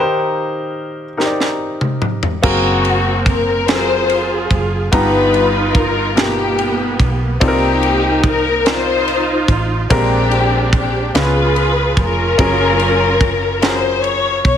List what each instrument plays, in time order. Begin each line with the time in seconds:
Already playing: grand piano D#3 D#4 G4 A#4 D5 F5
0.00 grand piano C5
1.17 grand piano D#4 G4 A#4 C5, snare
1.26 grand piano D5
1.40 snare
1.81 mid tom
2.02 mid tom
2.23 floor tom
2.42 fingered electric bass F#1, string section A#3 C4 F#4, grand piano C4 F#4 G#4 A#4 F5, kick, crash
2.85 ride
3.26 string section A#4, kick, ride
3.68 grand piano F#3 C4 F4 G#4 A4, string section F4 G#4 C5, snare, ride
3.75 grand piano A#4
4.10 ride
4.51 fingered electric bass F#1, kick, ride
4.92 fingered electric bass G1, grand piano G2 B3 D#4 F4 G4 A#5, string section D#4 F4 B4, kick, ride
5.34 ride
5.75 string section A#4, kick, ride
6.15 grand piano B2 D#4 F4 G4 A#4, string section A#3 B3 G4, snare, ride
6.59 ride
7.00 fingered electric bass B1, kick, ride
7.40 fingered electric bass C2, grand piano C3 C4 D#4 F4 A4 D5, string section A#3 D#4 G4, kick, ride
7.48 grand piano A#4
7.83 ride
8.24 string section A#4, kick, ride
8.65 grand piano C4 D#4 F4 A#4 D5, snare, ride
8.70 string section D#4 F4 C5
9.08 ride
9.48 fingered electric bass A1, kick, ride
9.90 fingered electric bass A#1, grand piano A#2 G#3 C4 D4 G4 A#4, string section C4 D4 G4, kick, ride
10.31 ride
10.73 kick, ride
10.77 string section G4
11.14 fingered electric bass C#2, grand piano C#3 B3 C#4 F4 G#4 B4, string section F4, snare, ride
11.18 string section G#4 B4
11.56 ride
11.97 fingered electric bass F1, string section C#4 F4 A#4, kick, ride
12.38 fingered electric bass F#1, grand piano F#3 C#4 F4 G#4 A#4, kick, ride
12.80 ride
13.21 kick, ride
13.62 grand piano C#4 F4 F#4 G#4 A#4, string section C5, snare, ride
14.04 string section C#5, ride
14.45 fingered electric bass B1, string section C#5, kick, ride